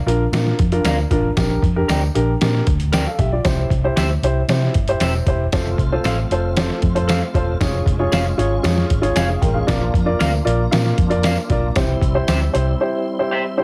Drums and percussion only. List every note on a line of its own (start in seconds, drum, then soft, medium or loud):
0.08 closed hi-hat medium
0.33 snare loud
0.33 closed hi-hat medium
0.33 tambourine medium
0.47 snare soft
0.59 kick medium
0.59 closed hi-hat medium
0.72 closed hi-hat soft
0.85 snare loud
0.85 closed hi-hat loud
0.85 tambourine medium
1.11 kick medium
1.11 closed hi-hat medium
1.37 kick loud
1.37 snare loud
1.37 closed hi-hat medium
1.37 tambourine medium
1.63 kick medium
1.63 closed hi-hat medium
1.89 snare medium
1.89 closed hi-hat medium
1.89 tambourine medium
2.15 closed hi-hat medium
2.41 snare loud
2.41 closed hi-hat medium
2.41 tambourine medium
2.55 snare soft
2.67 kick medium
2.67 closed hi-hat medium
2.80 closed hi-hat soft
2.93 snare loud
2.93 closed hi-hat loud
2.93 tambourine medium
3.19 kick medium
3.19 closed hi-hat medium
3.45 kick loud
3.45 snare loud
3.45 closed hi-hat medium
3.45 tambourine medium
3.70 kick medium
3.70 closed hi-hat medium
3.97 snare medium
3.97 closed hi-hat medium
3.97 tambourine medium
4.23 closed hi-hat medium
4.49 snare loud
4.49 closed hi-hat medium
4.49 tambourine medium
4.62 snare soft
4.74 kick medium
4.74 closed hi-hat medium
4.88 closed hi-hat medium
5.00 snare loud
5.00 closed hi-hat loud
5.00 tambourine medium
5.27 kick medium
5.27 closed hi-hat medium
5.52 kick loud
5.52 snare loud
5.52 closed hi-hat medium
5.52 tambourine medium
5.78 kick medium
5.78 closed hi-hat medium
6.04 snare medium
6.04 closed hi-hat medium
6.04 tambourine medium
6.31 closed hi-hat medium
6.56 snare loud
6.56 closed hi-hat medium
6.56 tambourine medium
6.70 snare soft
6.82 kick medium
6.82 closed hi-hat medium
6.96 closed hi-hat soft
7.09 snare loud
7.09 closed hi-hat medium
7.09 tambourine medium
7.34 kick medium
7.34 closed hi-hat medium
7.61 kick loud
7.61 snare loud
7.61 closed hi-hat medium
7.61 tambourine medium
7.86 kick medium
7.86 closed hi-hat medium
8.12 snare medium
8.12 closed hi-hat medium
8.12 tambourine medium
8.39 closed hi-hat medium
8.64 snare loud
8.64 closed hi-hat medium
8.64 tambourine medium
8.78 snare soft
8.90 kick medium
8.90 closed hi-hat medium
9.03 closed hi-hat medium
9.16 snare loud
9.16 closed hi-hat loud
9.16 tambourine medium
9.42 kick medium
9.42 closed hi-hat medium
9.68 kick loud
9.68 snare loud
9.68 closed hi-hat medium
9.68 tambourine medium
9.94 kick medium
9.94 closed hi-hat medium
10.20 snare medium
10.20 closed hi-hat medium
10.20 tambourine medium
10.47 closed hi-hat medium
10.72 snare loud
10.72 closed hi-hat medium
10.72 tambourine medium
10.86 snare soft
10.98 kick medium
10.98 closed hi-hat medium
11.11 closed hi-hat medium
11.23 snare loud
11.23 closed hi-hat loud
11.23 tambourine medium
11.50 kick medium
11.50 closed hi-hat medium
11.76 kick loud
11.76 snare loud
11.76 closed hi-hat medium
11.76 tambourine medium
12.02 kick medium
12.02 closed hi-hat medium
12.28 snare medium
12.28 closed hi-hat medium
12.28 tambourine medium
12.55 closed hi-hat medium